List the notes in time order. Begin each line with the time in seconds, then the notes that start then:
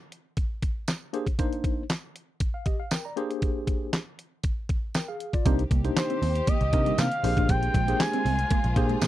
0.12 closed hi-hat
0.37 kick, closed hi-hat
0.62 kick, closed hi-hat
0.88 snare, clap, closed hi-hat, tambourine
1.13 A#3 D4 G4 G#4 C5, closed hi-hat
1.27 kick, closed hi-hat
1.39 A#3 D4 D#4 C5, kick, closed hi-hat
1.53 closed hi-hat
1.64 kick, closed hi-hat
1.90 snare, clap, closed hi-hat, tambourine
2.16 closed hi-hat
2.40 kick, closed hi-hat
2.54 F5
2.66 G4 D#5, kick, closed hi-hat
2.80 F5
2.91 A#4 G5, snare, clap, closed hi-hat, tambourine
3.05 D5 A#5
3.17 A#3 D4 G4 G#4 C5, closed hi-hat
3.31 closed hi-hat
3.42 kick, closed hi-hat
3.67 kick, closed hi-hat
3.93 snare, clap, closed hi-hat, tambourine
4.19 closed hi-hat
4.44 kick, closed hi-hat
4.69 kick, closed hi-hat
4.94 A#4 G5, snare, clap, closed hi-hat, tambourine
5.08 G#4 F5
5.20 closed hi-hat
5.33 F4 D5, kick, closed hi-hat
5.45 C2 C3 D#3 A#3 C4 D4 D#4 G4 C5, kick, closed hi-hat
5.59 muted clean electric guitar stroke, closed hi-hat
5.71 C2 A#3, kick, closed hi-hat
5.84 A#3 D4 D#4 G4 C5, closed hi-hat
5.97 C5, muted clean electric guitar stroke, snare, clap, closed hi-hat, tambourine
6.10 C4, closed hi-hat
6.22 D#2 C4, open hi-hat
6.35 closed hi-hat
6.47 A#3 D#5, kick, closed hi-hat
6.61 C2, muted clean electric guitar stroke, closed hi-hat
6.72 C3 A#3 D4 D#4 G4 A#4, kick, closed hi-hat
6.86 G3, closed hi-hat
6.98 C3 A#3 F5, snare, clap, closed hi-hat, tambourine
7.12 closed hi-hat
7.23 A#1 G#3 A#3 D4 F4 G4 G#4 C5, muted clean electric guitar stroke, open hi-hat
7.37 A1 D4, kick, closed hi-hat
7.49 A#1 A#3 G5, kick, closed hi-hat
7.63 muted clean electric guitar stroke, closed hi-hat
7.74 A#1 G#3, kick, closed hi-hat
7.88 A#3 D4 G4 G#4 C5, closed hi-hat
8.00 G#5, muted clean electric guitar stroke, snare, clap, closed hi-hat, tambourine
8.13 C4, closed hi-hat
8.25 C2 C4, open hi-hat
8.39 closed hi-hat
8.50 A#3, kick, closed hi-hat
8.64 A#1, muted clean electric guitar stroke, closed hi-hat
8.76 A#2 A#3 D4 G4 G#4 C5, kick, closed hi-hat
8.89 G#3, closed hi-hat
9.01 A#2 A#3, snare, clap, closed hi-hat, tambourine